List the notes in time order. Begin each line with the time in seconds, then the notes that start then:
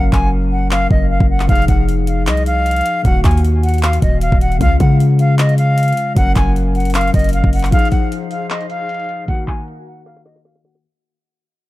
Already playing: F#1 F#3 C#4 A#4
0.13 F#1 G#5, kick, clap
0.52 F#5
0.71 F5, clap
0.91 F#1 D#5, kick
1.11 F5
1.20 F#1, kick
1.30 F#5
1.40 clap
1.47 F1 F3 D#4 F5, kick, closed hi-hat
1.51 G#4
1.55 closed hi-hat
1.62 closed hi-hat
1.68 F1 F#5, kick, closed hi-hat
1.89 closed hi-hat
2.07 F5, closed hi-hat
2.27 C2 D#5, clap, closed hi-hat
2.37 closed hi-hat
2.46 F5, closed hi-hat
2.66 closed hi-hat
2.71 closed hi-hat
2.76 closed hi-hat
2.81 closed hi-hat
2.86 closed hi-hat
3.03 D#1 D#3 A#3 F#5, kick, closed hi-hat
3.07 F#4
3.24 D#2 G#5, kick, clap, closed hi-hat
3.31 closed hi-hat
3.37 closed hi-hat
3.45 closed hi-hat
3.63 F#5, closed hi-hat
3.69 closed hi-hat
3.74 closed hi-hat
3.78 closed hi-hat
3.83 F5, clap
3.93 closed hi-hat
4.02 D#1 D#5, kick, closed hi-hat
4.21 F5, closed hi-hat
4.32 D#1, kick
4.41 F#5, closed hi-hat
4.52 closed hi-hat
4.58 C#2 C#3 G#3 F5, kick, closed hi-hat
4.63 F4
4.80 C#3 F#5, kick, closed hi-hat
5.00 closed hi-hat
5.19 F5, closed hi-hat
5.39 D#5, clap, closed hi-hat
5.49 closed hi-hat
5.58 F5, closed hi-hat
5.78 closed hi-hat
5.83 closed hi-hat
5.88 closed hi-hat
5.93 closed hi-hat
5.97 closed hi-hat
6.15 F#1 F#3 C#4 F#5, kick, closed hi-hat
6.19 A#4
6.36 F#1 G#5, kick, clap, closed hi-hat
6.56 closed hi-hat
6.75 F#5, closed hi-hat
6.80 closed hi-hat
6.85 closed hi-hat
6.90 closed hi-hat
6.94 F5, clap, closed hi-hat
7.01 closed hi-hat
7.08 closed hi-hat
7.14 F#1 D#5, kick, closed hi-hat
7.19 closed hi-hat
7.24 closed hi-hat
7.29 closed hi-hat
7.33 F5, closed hi-hat
7.44 F#1, kick
7.53 F#5, closed hi-hat, open hi-hat
7.59 clap, closed hi-hat
7.66 closed hi-hat
7.71 F3 D#4 G#4 C5 F5, kick, closed hi-hat
7.75 G#4, closed hi-hat
7.85 closed hi-hat
7.92 F#5, kick, closed hi-hat
8.12 closed hi-hat
8.31 F5, closed hi-hat
8.50 D#5, clap, closed hi-hat
8.61 closed hi-hat
8.70 F5, closed hi-hat
8.89 closed hi-hat
8.94 closed hi-hat
9.00 closed hi-hat
9.04 closed hi-hat
9.09 closed hi-hat
9.26 D#3 A#3 F#4 A#4 F#5, kick, closed hi-hat
9.30 F#4
9.48 G#5, kick, clap, closed hi-hat
9.54 closed hi-hat
9.61 closed hi-hat
9.68 closed hi-hat
9.86 F#5, closed hi-hat
9.92 closed hi-hat
9.97 closed hi-hat
10.02 closed hi-hat
10.06 F5, snare
10.16 snare
10.25 D#5, snare
10.36 snare
10.45 F5, snare
10.55 snare
10.64 D#3 A#3 F#4 F#5, snare
10.75 snare